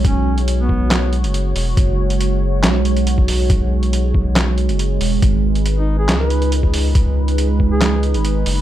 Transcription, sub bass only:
X:1
M:4/4
L:1/16
Q:1/4=139
K:G#phr
V:1 name="Sub bass" clef=bass
B,,,8- B,,,3 F,,,3 E,,,2 | F,,,8 B,,,8- | B,,,8- B,,,3 F,,,3 E,,,2 | G,,,8 C,,8- |
C,,8- C,,3 G,,,3 F,,,2 |]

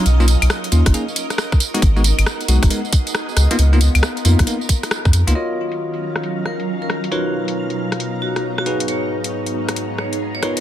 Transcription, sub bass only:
X:1
M:4/4
L:1/16
Q:"Swing 16ths" 1/4=136
K:Abdor
V:1 name="Sub bass" clef=bass
=B,,,3 B,,, z2 ^D,, ^F,,, z8 | A,,,3 A,,, z2 C,, G,,, z6 D,, z | D,,3 D,, z2 F,, C,, z4 z F,, F,, D,, | z16 |
z16 | z16 |]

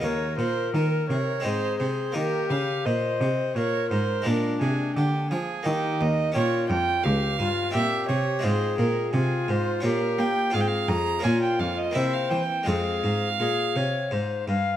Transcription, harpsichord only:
X:1
M:3/4
L:1/8
Q:1/4=85
K:Ebmix
V:1 name="Harpsichord"
[B,E]4 [A,CE]2 | [B,E]6 | [A,B,=D]4 [B,E]2 | [K:Fm] [DG]4 [CG]2 |
[A,CF]4 [DF]2 | [CF]2 [B,DF]2 [B,C=E]2 | [A,CF]6 |]
V:2 name="Harpsichord" clef=bass
E,, B,, E, C, A,, C, | E, D, B,, C, B,, A,, | B,, C, =D, F, E, E,, | [K:Fm] B,, F,, D,, G,, B,, C, |
A,, B,, C, A,, B,, B, | A,, F,, B,, F,, C, =E, | F,, A,, B,, C, A,, G,, |]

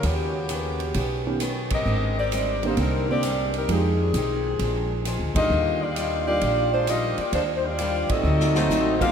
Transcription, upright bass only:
X:1
M:4/4
L:1/8
Q:"Swing" 1/4=132
K:Eb
V:1 name="Upright bass" clef=bass
E,,4 =B,,,4 | A,,,4 C,,4 | F,,2 _C,,2 B,,,2- (3B,,, D,, _F,, | E,,4 B,,,3 z |
E,,3 z D,,2 =A,,,2 |]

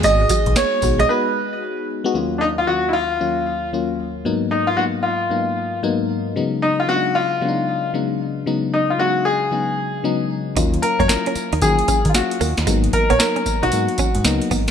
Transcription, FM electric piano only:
X:1
M:4/4
L:1/16
Q:"Swing 16ths" 1/4=114
K:G#phr
V:1 name="FM electric piano"
[G,B,DG]4- [G,B,DG] z [G,B,DF]2 [G,B,DF]6 z [G,B,DF] | [K:Ebm] [E,,G,B,DF]4 [E,,G,B,DF]4 [E,,G,B,DF]4 [E,,G,B,DF]4 | [A,,G,B,CE]4 [A,,G,B,CE]4 [A,,G,B,CE]4 [A,,G,B,CE]4 | [D,G,A,CE]4 [D,G,A,C=DE]4 [_D,G,A,C=DE]4 [_D,G,A,CE]4 |
[D,G,A,CE]4 [D,G,A,CE]4 [D,G,A,CE]4 [D,G,A,CE]4 | [G,B,DF]4 [G,B,D_F=F]4 [G,B,DF]4 [G,B,Df]4 | [G,B,CE]4 [G,B,CE]4 [G,B,CE]4 [G,B,CE]4 |]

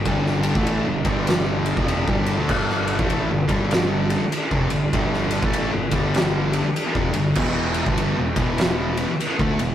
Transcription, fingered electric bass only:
X:1
M:4/4
L:1/16
Q:"Swing" 1/4=98
K:Gmix
V:1 name="Fingered electric bass" clef=bass
G,,,3 A,,,2 G,,, G,,,4- G,,, F,,,2 G,,,2 D,, | G,,,3 A,,,2 G,,, G,,,4- G,,, z2 F,,, G,,,2 | G,,,3 A,,,2 G,,, G,,,4- G,,, z2 F,,, G,,,2 | E,,,3 G,,,2 E,,, E,,,4- E,,, z2 D,, E,,,2 |]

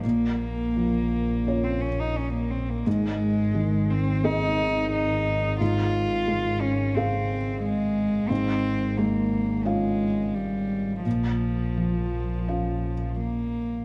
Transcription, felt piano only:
X:1
M:4/4
L:1/8
Q:1/4=87
K:Bbdor
V:1 name="Felt piano"
B,,2 F,2 [DFd]4 | A,,2 E,2 [CAe]4 | A,,2 A,2 [CAf]4 | A,,2 A,2 [DFf]4 |
B,,2 F,2 [DFf]4 |]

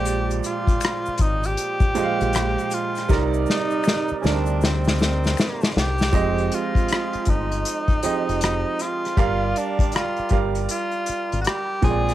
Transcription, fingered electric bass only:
X:1
M:4/4
L:1/16
Q:"Swing 16ths" 1/4=79
K:Fdor
V:1 name="Fingered electric bass" clef=bass
B,,,2 z4 A,,,2 z3 B,,,2 z3 | C,,2 z4 D,,6 z2 C,,2 | F,,,2 z4 G,,,2 z3 F,,,2 z3 | G,,,2 z4 G,,,2 z3 A,,, z2 B,,,2 |]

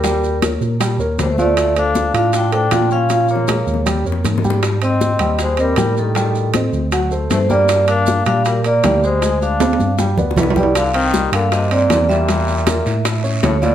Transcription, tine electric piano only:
X:1
M:4/4
L:1/8
Q:1/4=157
K:Gm
V:1 name="Tine electric piano" clef=bass
E,,3 B,,2 E,, D,,2- | D,,3 A,,3 B,,2- | B,,3 E,,2 F,, _A,,2- | _A,,3 E,,3 =A,,2- |
A,,3 D,,3 G,,2- | G,,3 B,,3 D,,2- | D,,3 G,,2 D,, C,,2- | C,,3 G,,3 =E,,2- |
=E,,3 A,,3 D,,2 |]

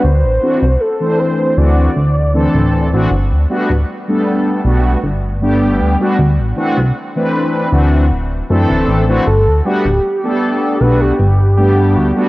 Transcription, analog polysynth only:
X:1
M:4/4
L:1/16
Q:1/4=78
K:G
V:1 name="Analog polysynth"
z2 [E,A,CDF] z2 [E,A,CDc]3 [E,A,CDF]2 z2 [E,A,CDA]3 [E,A,CDF] | z2 [G,A,B,DF] z2 [G,A,B,DA]3 [G,A,B,DF]2 z2 [G,A,B,DG]3 [G,A,B,DF] | z2 [E,A,CDF] z2 [E,A,CDB]3 [E,A,CDF]2 z2 [E,A,CDA]3 [E,A,CDF] | z2 [G,A,B,DF] z2 [G,A,B,DA]3 [G,A,B,DF]2 z2 [G,A,B,DG]3 [G,A,B,DF] |]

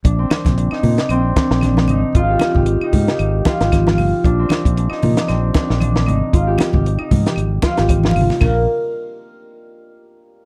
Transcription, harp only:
X:1
M:4/4
L:1/16
Q:"Swing 16ths" 1/4=115
K:Bbmix
V:1 name="Harp"
D C2 z D E2 D C2 D2 D2 E2 | F G2 G2 E2 G2 z F G2 F2 z | D C2 z D E2 D C2 D2 D2 E2 | F G2 G2 E2 G2 z F G2 F2 z |
B,2 z12 z2 |]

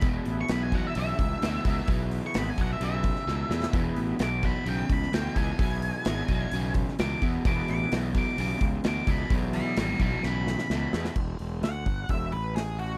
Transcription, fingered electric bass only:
X:1
M:4/4
L:1/8
Q:1/4=129
K:Emix
V:1 name="Fingered electric bass" clef=bass
E,,, A,,, B,,,2 B,,, C,, D,, C,, | B,,,2 G,,, B,,, B,,,2 C,, E,, | E,,, A,,, B,,,2 B,,, C,, D,, C,, | B,,,2 G,,, B,,, B,,,2 C,, E,, |
E,,, A,,, B,,,2 B,,, C,, D,, C,, | B,,,2 G,,, B,,, B,,,2 C,, E,, | E,,, E,,, D,, =G,,, E,,, A,,,3 |]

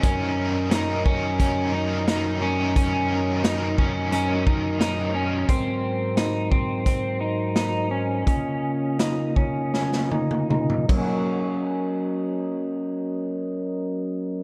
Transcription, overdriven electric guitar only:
X:1
M:4/4
L:1/8
Q:1/4=87
K:Gblyd
V:1 name="Overdriven electric guitar"
[G,DEB] [DEB] [G,DEB] [DEB] [G,DEB] [DEB] [G,DEB] [DEB] | [G,DEB] [DEB] [G,DEB] [DEB] [G,DEB] [DEB] [G,DEB] [DEB] | z8 | z8 |
z8 |]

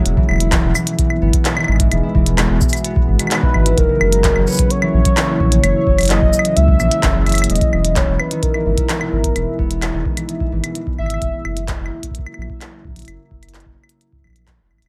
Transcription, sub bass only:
X:1
M:4/4
L:1/16
Q:1/4=129
K:Elyd
V:1 name="Sub bass" clef=bass
E,,, z E,,,3 E,,, z4 G,,, z3 G,,,2 | E,,, z E,,,3 E,,, z4 G,,, z3 G,,,2 | F,,, z F,,,3 F,,, z4 A,,, z3 A,,,2 | F,,, z F,,,3 F,,, z2 C,,2 A,,, z F,,,4 |
E,,, z E,,,3 E,,, z4 G,,, z3 G,,,2 | E,,, z E,,,3 E,,, z4 G,,, z3 G,,,2 | F,,, z F,,,3 F,,, z4 A,,, z3 A,,,2 | F,,, z F,,,3 F,,, z4 A,,,3 E,,, A,,, E,,, |]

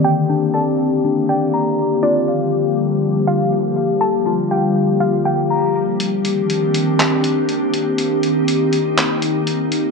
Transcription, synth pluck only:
X:1
M:4/4
L:1/8
Q:1/4=121
K:Cdor
V:1 name="Synth pluck"
g2 a3 g z2 | d4- d f3 | a2 g2 f g z2 | z8 |
z8 |]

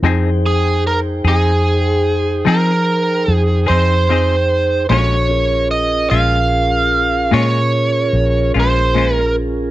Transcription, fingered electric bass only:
X:1
M:12/8
L:1/8
Q:3/8=49
K:Fm
V:1 name="Fingered electric bass" clef=bass
F,,3 F,,3 F,2 F,, F,,3 | B,,,3 B,,,3 B,,2 B,,, B,,,3 |]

